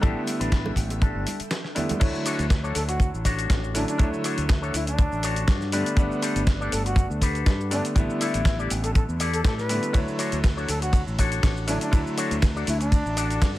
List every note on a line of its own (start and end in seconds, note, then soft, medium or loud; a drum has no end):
0.00 0.13 A1 loud
0.00 1.97 D3 medium
0.00 1.23 D3 medium
0.00 1.23 G3 medium
0.00 1.24 A3 medium
0.00 1.24 B3 medium
0.00 0.21 D4 loud
0.00 1.24 E4 loud
0.00 0.21 G4 loud
0.00 1.97 A4 medium
0.00 0.21 A4 loud
0.00 1.99 E5 medium
0.00 1.97 G5 medium
0.00 kick loud
0.00 closed hi-hat medium
0.00 shaker soft
0.27 open hi-hat loud
0.27 high bongo soft
0.27 shaker medium
0.40 0.73 A1 medium
0.40 0.71 D4 medium
0.40 0.71 G4 medium
0.40 0.71 B4 loud
0.40 closed hi-hat medium
0.40 shaker medium
0.52 kick loud
0.52 snare loud
0.52 closed hi-hat medium
0.52 shaker soft
0.66 high bongo medium
0.66 high conga medium
0.76 1.10 A1 medium
0.76 kick medium
0.76 open hi-hat medium
0.76 shaker medium
0.90 closed hi-hat medium
0.90 high bongo medium
0.90 shaker medium
1.01 1.40 D4 medium
1.01 1.40 G4 medium
1.01 1.40 A4 medium
1.01 kick loud
1.01 closed hi-hat medium
1.01 shaker soft
1.15 1.24 G1 medium
1.27 open hi-hat loud
1.27 high conga medium
1.27 shaker loud
1.40 muted fingered electric bass stroke soft
1.40 closed hi-hat medium
1.40 shaker medium
1.51 snare loud
1.51 closed hi-hat medium
1.51 shaker soft
1.64 snare soft
1.75 1.98 D3 medium
1.75 1.98 G3 medium
1.75 1.98 A3 medium
1.75 1.98 B3 medium
1.75 1.98 E4 medium
1.75 muted clean electric guitar stroke soft
1.75 open hi-hat medium
1.75 low conga medium
1.75 shaker medium
1.89 muted clean electric guitar stroke medium
1.89 closed hi-hat medium
1.89 high conga medium
1.89 low conga medium
1.89 shaker medium
2.00 2.12 D2 loud
2.00 3.22 D3 loud
2.00 3.22 F#3 medium
2.00 3.22 A3 medium
2.00 3.23 E4 loud
2.00 3.22 C#5 medium
2.00 kick loud
2.00 closed hi-hat medium
2.00 crash loud
2.00 cabasa soft
2.15 cabasa soft
2.25 2.45 D4 loud
2.25 2.45 F#4 medium
2.25 2.45 A4 loud
2.25 2.45 C#5 loud
2.25 open hi-hat loud
2.25 cabasa medium
2.39 2.72 D2 medium
2.39 closed hi-hat medium
2.39 cabasa soft
2.50 kick loud
2.50 snare loud
2.50 closed hi-hat medium
2.50 cabasa soft
2.63 2.75 D4 medium
2.63 2.75 F#4 medium
2.63 2.75 A4 medium
2.63 2.75 C#5 medium
2.63 cabasa soft
2.75 3.09 D2 medium
2.75 2.86 A4 medium
2.75 open hi-hat loud
2.75 cabasa medium
2.88 3.09 F#4 medium
2.88 muted clean electric guitar stroke medium
2.88 closed hi-hat medium
2.88 cabasa soft
3.00 muted clean electric guitar stroke soft
3.00 kick loud
3.00 closed hi-hat medium
3.00 cabasa soft
3.14 3.46 A1 medium
3.14 cabasa soft
3.25 3.75 D4 medium
3.25 3.74 F#4 loud
3.25 3.75 A4 loud
3.25 3.75 C#5 loud
3.25 kick medium
3.25 open hi-hat loud
3.25 cabasa medium
3.39 closed hi-hat medium
3.39 cabasa soft
3.50 3.84 A1 medium
3.50 kick loud
3.50 snare loud
3.50 closed hi-hat medium
3.50 cabasa soft
3.64 cabasa soft
3.74 3.96 D3 medium
3.74 3.96 F#3 medium
3.74 3.97 A3 medium
3.74 3.97 C#4 medium
3.74 3.85 D4 medium
3.74 3.97 E4 medium
3.74 open hi-hat loud
3.74 cabasa medium
3.88 4.09 D4 medium
3.88 closed hi-hat medium
3.88 cabasa soft
3.98 4.10 D2 loud
3.98 5.20 D3 loud
3.98 5.20 F#3 medium
3.98 5.21 A3 medium
3.98 5.21 E4 loud
3.98 5.21 C#5 medium
3.98 kick loud
3.98 closed hi-hat medium
3.98 cabasa soft
4.13 cabasa soft
4.24 4.43 D4 medium
4.24 4.43 F#4 medium
4.24 4.44 A4 loud
4.24 4.44 C#5 loud
4.24 open hi-hat loud
4.24 cabasa medium
4.38 4.70 D2 medium
4.38 closed hi-hat medium
4.38 cabasa soft
4.49 kick loud
4.49 snare loud
4.49 closed hi-hat medium
4.49 cabasa soft
4.62 4.74 D4 medium
4.62 4.74 F#4 medium
4.62 4.74 A4 medium
4.62 4.74 C#5 loud
4.62 cabasa soft
4.74 5.08 D2 medium
4.74 4.85 E4 medium
4.74 open hi-hat loud
4.74 cabasa medium
4.87 5.56 D4 medium
4.87 muted clean electric guitar stroke medium
4.87 closed hi-hat medium
4.87 cabasa soft
4.98 muted clean electric guitar stroke soft
4.98 kick loud
4.98 closed hi-hat medium
4.98 cabasa soft
5.12 5.45 A1 medium
5.12 cabasa soft
5.23 5.72 D4 loud
5.23 5.73 F#4 loud
5.23 5.72 A4 loud
5.23 5.73 C#5 loud
5.23 open hi-hat loud
5.23 cabasa medium
5.36 closed hi-hat medium
5.36 cabasa soft
5.48 5.82 G2 medium
5.48 kick loud
5.48 snare loud
5.48 closed hi-hat medium
5.48 cabasa soft
5.61 snare soft
5.61 cabasa soft
5.72 5.95 D3 medium
5.72 5.95 G3 medium
5.72 5.95 A3 medium
5.72 5.95 B3 medium
5.72 6.13 D4 medium
5.72 5.95 D4 medium
5.72 6.13 G4 medium
5.72 6.14 A4 medium
5.72 6.14 B4 loud
5.72 open hi-hat loud
5.72 cabasa medium
5.86 closed hi-hat medium
5.86 cabasa soft
5.96 6.08 G1 loud
5.96 7.18 D3 loud
5.96 7.19 G3 medium
5.96 7.19 A3 medium
5.96 7.19 B3 medium
5.96 7.19 D4 loud
5.96 kick loud
5.96 closed hi-hat medium
5.96 cabasa soft
6.11 cabasa soft
6.22 6.41 D4 medium
6.22 6.42 G4 medium
6.22 6.42 A4 loud
6.22 6.42 B4 loud
6.22 open hi-hat loud
6.22 cabasa medium
6.36 6.68 G1 medium
6.36 closed hi-hat medium
6.36 cabasa soft
6.47 kick loud
6.47 snare loud
6.47 closed hi-hat medium
6.47 cabasa soft
6.61 6.72 D4 medium
6.61 6.72 G4 medium
6.61 6.72 A4 medium
6.61 6.72 D5 loud
6.61 cabasa soft
6.72 7.06 G1 medium
6.72 6.83 A4 medium
6.72 open hi-hat loud
6.72 cabasa medium
6.85 7.07 F#4 loud
6.85 muted clean electric guitar stroke medium
6.85 closed hi-hat medium
6.85 cabasa soft
6.96 muted clean electric guitar stroke soft
6.96 kick loud
6.96 closed hi-hat medium
6.96 cabasa soft
7.10 7.42 D2 medium
7.10 cabasa soft
7.22 7.71 D4 loud
7.22 7.72 G4 loud
7.22 7.71 A4 loud
7.22 7.72 B4 loud
7.22 kick medium
7.22 open hi-hat loud
7.22 cabasa medium
7.35 closed hi-hat medium
7.35 cabasa soft
7.46 7.80 G2 medium
7.46 kick loud
7.46 snare loud
7.46 closed hi-hat medium
7.46 cabasa soft
7.61 cabasa soft
7.71 7.93 D3 medium
7.71 7.93 G3 medium
7.71 7.93 A3 medium
7.71 7.93 B3 medium
7.71 7.82 D4 medium
7.71 7.94 D4 medium
7.71 open hi-hat loud
7.71 cabasa medium
7.85 closed hi-hat medium
7.85 cabasa soft
7.95 8.06 A1 loud
7.95 9.17 D3 loud
7.95 9.17 G3 medium
7.95 9.17 A3 medium
7.95 9.18 B3 medium
7.95 9.18 E4 loud
7.95 kick loud
7.95 closed hi-hat medium
7.95 cabasa soft
8.10 cabasa soft
8.20 8.40 E4 loud
8.20 8.59 E4 medium
8.20 8.40 G4 medium
8.20 8.40 A4 loud
8.20 8.40 D5 loud
8.20 open hi-hat loud
8.20 cabasa medium
8.34 8.67 A1 medium
8.34 closed hi-hat medium
8.34 cabasa soft
8.45 kick loud
8.45 snare loud
8.45 closed hi-hat medium
8.45 cabasa soft
8.59 8.71 E4 medium
8.59 8.71 G4 medium
8.59 8.71 A4 medium
8.59 8.71 D5 loud
8.59 cabasa soft
8.70 9.04 A1 medium
8.70 open hi-hat loud
8.70 cabasa medium
8.83 8.91 A4 medium
8.83 muted clean electric guitar stroke medium
8.83 closed hi-hat medium
8.83 cabasa soft
8.95 9.04 A4 medium
8.95 muted clean electric guitar stroke soft
8.95 kick loud
8.95 closed hi-hat soft
8.95 cabasa soft
9.09 9.41 E2 medium
9.09 cabasa soft
9.20 9.69 E4 loud
9.20 9.69 G4 loud
9.20 9.70 A4 loud
9.20 9.44 D5 loud
9.20 open hi-hat loud
9.20 cabasa medium
9.33 9.41 A4 medium
9.33 closed hi-hat medium
9.33 cabasa soft
9.44 9.78 A2 medium
9.44 9.54 A4 medium
9.44 9.91 D5 medium
9.44 kick loud
9.44 snare loud
9.44 closed hi-hat medium
9.44 cabasa soft
9.58 10.00 B4 medium
9.58 snare soft
9.58 cabasa soft
9.69 9.91 D3 medium
9.69 9.91 G3 medium
9.69 9.91 A3 medium
9.69 9.92 B3 medium
9.69 9.92 E4 medium
9.69 open hi-hat loud
9.69 cabasa medium
9.83 closed hi-hat medium
9.83 cabasa soft
9.93 10.05 D2 loud
9.93 11.15 D3 loud
9.93 11.15 F#3 medium
9.93 11.15 A3 medium
9.93 11.16 E4 loud
9.93 11.16 C#5 medium
9.93 kick loud
9.93 closed hi-hat soft
9.93 ride medium
9.93 cabasa soft
10.08 cabasa soft
10.19 10.38 D4 loud
10.19 10.38 F#4 medium
10.19 10.38 A4 medium
10.19 10.38 C#5 loud
10.19 open hi-hat loud
10.19 cabasa medium
10.32 10.65 D2 medium
10.32 closed hi-hat medium
10.32 cabasa soft
10.44 kick loud
10.44 snare loud
10.44 closed hi-hat medium
10.44 ride medium
10.44 cabasa soft
10.57 10.69 D4 medium
10.57 10.69 F#4 medium
10.57 10.69 A4 medium
10.57 10.69 C#5 medium
10.57 cabasa soft
10.68 11.03 D2 medium
10.68 10.79 A4 medium
10.68 open hi-hat loud
10.68 cabasa medium
10.82 11.03 F#4 medium
10.82 muted clean electric guitar stroke medium
10.82 closed hi-hat medium
10.82 cabasa soft
10.93 muted clean electric guitar stroke soft
10.93 kick loud
10.93 closed hi-hat soft
10.93 ride medium
10.93 cabasa soft
11.07 11.39 A1 medium
11.07 cabasa soft
11.18 11.68 D4 loud
11.18 11.68 F#4 loud
11.18 11.68 A4 loud
11.18 11.68 C#5 loud
11.18 kick medium
11.18 open hi-hat loud
11.18 cabasa medium
11.32 closed hi-hat medium
11.32 cabasa soft
11.43 11.77 A1 medium
11.43 kick loud
11.43 snare loud
11.43 closed hi-hat medium
11.43 ride medium
11.43 cabasa soft
11.57 cabasa soft
11.67 11.90 D3 medium
11.67 11.90 F#3 medium
11.67 11.90 A3 medium
11.67 11.90 C#4 medium
11.67 11.78 D4 medium
11.67 11.90 E4 medium
11.67 open hi-hat loud
11.67 cabasa medium
11.81 12.02 D4 loud
11.81 closed hi-hat medium
11.81 cabasa soft
11.91 12.03 D2 loud
11.91 13.13 D3 loud
11.91 13.13 F#3 medium
11.91 13.14 A3 medium
11.91 13.14 E4 loud
11.91 kick loud
11.91 closed hi-hat medium
11.91 ride medium
11.91 cabasa soft
12.07 cabasa soft
12.17 12.36 D4 medium
12.17 12.37 F#4 medium
12.17 12.37 A4 loud
12.17 12.37 C#5 loud
12.17 open hi-hat loud
12.17 cabasa medium
12.31 12.63 D2 medium
12.31 closed hi-hat medium
12.31 cabasa soft
12.42 kick loud
12.42 snare loud
12.42 closed hi-hat medium
12.42 ride medium
12.42 cabasa soft
12.56 12.67 D4 medium
12.56 12.67 F#4 medium
12.56 12.67 A4 medium
12.56 12.67 D5 loud
12.56 cabasa soft
12.67 13.01 D2 loud
12.67 12.78 E4 medium
12.67 open hi-hat loud
12.67 cabasa medium
12.80 13.49 D4 medium
12.80 muted clean electric guitar stroke medium
12.80 closed hi-hat medium
12.80 cabasa soft
12.92 muted clean electric guitar stroke soft
12.92 kick loud
12.92 closed hi-hat medium
12.92 ride medium
12.92 cabasa soft
13.06 13.38 A1 medium
13.06 cabasa soft
13.16 13.59 D4 medium
13.16 13.59 F#4 medium
13.16 13.59 A4 loud
13.16 13.59 D5 loud
13.16 open hi-hat loud
13.16 cabasa medium
13.30 closed hi-hat medium
13.30 cabasa soft
13.42 13.59 G2 medium
13.42 kick loud
13.42 snare loud
13.42 closed hi-hat medium
13.42 ride medium
13.42 cabasa medium
13.55 snare soft